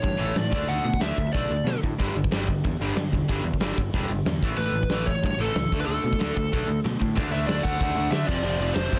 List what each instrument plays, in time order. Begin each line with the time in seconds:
Already playing: lead electric guitar C#5
0.02 picked electric bass G2, overdriven electric guitar A2 E3, kick, open hi-hat
0.17 picked electric bass A1, overdriven electric guitar A2 E3 A3
0.34 overdriven electric guitar A2 E3, picked electric bass A2, lead electric guitar D5, snare, open hi-hat
0.50 picked electric bass D2, overdriven electric guitar D3 A3 D4, kick
0.67 picked electric bass D2, overdriven electric guitar D3 A3 D4, lead electric guitar F#5, open hi-hat
0.84 picked electric bass B2, overdriven electric guitar D3 A3
0.94 kick
1.00 picked electric bass D2, overdriven electric guitar D3 A3 D4, lead electric guitar E5, snare, open hi-hat
1.18 picked electric bass D2, overdriven electric guitar D3 A3, kick
1.33 picked electric bass B1, overdriven electric guitar D3 A3 D4, lead electric guitar D5, kick, open hi-hat
1.50 picked electric bass D2, overdriven electric guitar D3 A3
1.64 picked electric bass B2, overdriven electric guitar D3, snare, open hi-hat
1.68 overdriven electric guitar A3
1.83 picked electric bass A2, overdriven electric guitar D3 A3, kick
1.99 picked electric bass G1, overdriven electric guitar G2 D3 G3, kick, open hi-hat
2.15 picked electric bass G1, overdriven electric guitar G2 D3
2.24 kick
2.31 picked electric bass G1, overdriven electric guitar G2 D3 G3, snare, open hi-hat
2.48 overdriven electric guitar G2 D3, kick
2.64 picked electric bass E2, overdriven electric guitar G2 D3, kick, open hi-hat
2.80 picked electric bass G1, overdriven electric guitar G2 D3 G3
2.96 picked electric bass G2, overdriven electric guitar G2 D3, snare, open hi-hat
3.12 picked electric bass E1, overdriven electric guitar G2 D3, kick
3.29 picked electric bass G1, overdriven electric guitar G2 D3 G3, kick, open hi-hat
3.44 picked electric bass E2, overdriven electric guitar G2 D3
3.54 kick
3.61 picked electric bass G1, overdriven electric guitar G2 D3 G3, snare, open hi-hat
3.78 picked electric bass G1, overdriven electric guitar G2 D3, kick
3.93 picked electric bass E1, overdriven electric guitar G2 D3 G3, kick, open hi-hat
4.09 picked electric bass G1, overdriven electric guitar G2 D3
4.26 picked electric bass E2, overdriven electric guitar G2 D3, snare, open hi-hat
4.42 picked electric bass A1, overdriven electric guitar A2 E3 A3, kick
4.57 picked electric bass A1, overdriven electric guitar A2 E3 A3, lead electric guitar B4, open hi-hat
4.72 picked electric bass A1
4.76 overdriven electric guitar A2 E3
4.83 kick
4.90 picked electric bass A1, overdriven electric guitar A2 E3 A3, snare, open hi-hat
5.06 overdriven electric guitar A2, lead electric guitar C#5, kick
5.11 overdriven electric guitar E3
5.23 picked electric bass G2, overdriven electric guitar A2 E3, lead electric guitar C#5, kick, open hi-hat
5.38 picked electric bass A1, overdriven electric guitar A2 E3, lead electric guitar A4
5.42 overdriven electric guitar A3
5.55 picked electric bass C#2, overdriven electric guitar A2 E3, snare
5.72 picked electric bass D2, overdriven electric guitar D3 A3 D4, kick
5.80 lead electric guitar B4
5.86 picked electric bass D2, overdriven electric guitar D3 A3 D4, lead electric guitar A4, open hi-hat
6.04 picked electric bass B2, overdriven electric guitar D3 A3
6.13 kick
6.19 picked electric bass D2, overdriven electric guitar D3 A3 D4, snare, open hi-hat
6.36 picked electric bass D2, overdriven electric guitar D3 A3, kick
6.52 picked electric bass B1, overdriven electric guitar D3 A3 D4, kick, open hi-hat
6.68 picked electric bass D2, overdriven electric guitar D3 A3
6.84 picked electric bass B2, overdriven electric guitar D3 A3, snare, open hi-hat
7.00 picked electric bass A2, overdriven electric guitar D3 A3, kick
7.16 picked electric bass D2, overdriven electric guitar D3 A3 D4, kick, crash
7.31 picked electric bass D2, overdriven electric guitar D3 A3 D4, lead electric guitar E5
7.47 picked electric bass D2, overdriven electric guitar D3 A3 D4, lead electric guitar D5, snare, open hi-hat
7.63 picked electric bass D2, overdriven electric guitar D3 A3 D4, lead electric guitar F#5, kick
7.80 picked electric bass D2, overdriven electric guitar D3 A3 D4, kick, open hi-hat
7.95 picked electric bass D2, overdriven electric guitar D3 A3 D4
8.11 picked electric bass D3, overdriven electric guitar D3 A3 D4, lead electric guitar E5, snare, open hi-hat
8.27 picked electric bass F1, overdriven electric guitar F2 C3 F3, lead electric guitar D5, kick, crash
8.42 picked electric bass F1, overdriven electric guitar F2 C3 F3
8.58 picked electric bass F1, overdriven electric guitar F2 C3 F3
8.74 picked electric bass F1, overdriven electric guitar F2 C3 F3, lead electric guitar C5, snare, open hi-hat
8.92 picked electric bass F1, overdriven electric guitar F2 C3 F3, kick